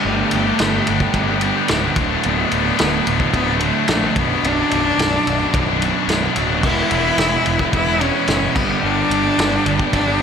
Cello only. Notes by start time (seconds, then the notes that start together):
0.03 A3
2.24 B3
3.35 B3
3.64 A3
4.20 B3
4.47 D4
6.64 E4
7.74 E4
8.01 C#4
8.55 B3
8.83 D4
9.92 D4